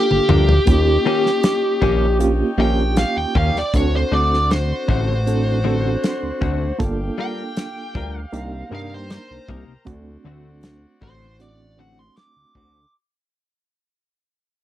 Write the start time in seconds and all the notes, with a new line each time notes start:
Already playing: A#3 D4 F4 G4 A4 F5 G5
0.11 G1, high tom
0.29 D2 G2 F3 A#3 D4, mid tom
0.49 floor tom
0.65 D#2 A#3 C#4 D#4 F4 G4 C#5 D#5, kick, closed hi-hat
1.05 D#3 A#3 C#4 G4
1.26 snare
1.43 snare, closed hi-hat
1.82 A#1 D#3 A#3 C#4 G4, kick
2.20 A#3 C#4 F4 G4, closed hi-hat
2.58 A#1 D#3 A#3 C#4 F4 G4 G5
2.97 F5, snare, closed hi-hat
3.17 D#2 G5
3.35 D#2 D#3 A#3 C#4 G4 F5, kick
3.54 D#2, snare
3.58 D5
3.74 D2 C4 D4 F#4 A4 C5 C#5 D5 F#5, kick, closed hi-hat
3.96 C5
4.12 D2 D3 A3 C4 F#4 D5
4.34 snare
4.51 C5, snare, closed hi-hat
4.88 A1 D3 A3 C4 F#4, kick
5.27 C4 D4 F#4 A4, closed hi-hat
5.64 D3 A3 C4 D4 F#4 A4
6.04 snare, closed hi-hat
6.23 D2
6.41 D2 D3 A3 C4 F#4, kick
6.79 G1 A#3 D4 F4 G4 A4 F5 G5, kick, closed hi-hat
7.18 G3 D4 F4 A#4 G5
7.57 snare, closed hi-hat
7.95 D2 G3 D4 F4 A#4, kick
8.19 F5
8.33 C2 A#3 D4 D#4 G4 A#4 C5 G5 A#5, closed hi-hat
8.70 G2 C3 A#3 D4 D#4 G4 A#4
8.75 F5
8.94 C5
9.10 C5, snare, closed hi-hat
9.31 C2
9.48 C2 C3 A#3 D#4 G4, kick
9.68 C2
9.85 D2 A3 C4 D4 F#4 D5 F#5, kick, closed hi-hat
10.24 D2 D3 A3 C4 F#4
10.63 snare, closed hi-hat
11.01 A1 D3 A3 C4 F#4 C5, kick
11.39 A3 C4 D4 F#4 D5, closed hi-hat
11.77 D3 A3 C4 D4 F#4 F#5
11.99 C6
12.17 D6, snare, closed hi-hat
12.36 D2
12.55 D2 D3 A3 C4 F#4 D6, kick